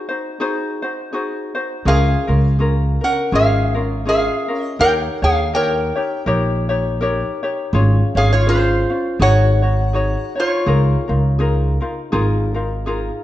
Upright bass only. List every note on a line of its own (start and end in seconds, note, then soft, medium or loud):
1.85 2.13 C#2 medium
2.28 2.96 C#2 medium
3.32 4.28 G#1 medium
4.79 5.07 D#2 medium
5.22 5.90 D#2 medium
6.26 7.21 A#1 medium
7.73 8.00 G#1 loud
8.15 8.83 G#1 medium
9.19 10.15 G#1 loud
10.66 10.94 C#2 loud
11.09 11.77 C#2 medium
12.13 13.08 G#1 medium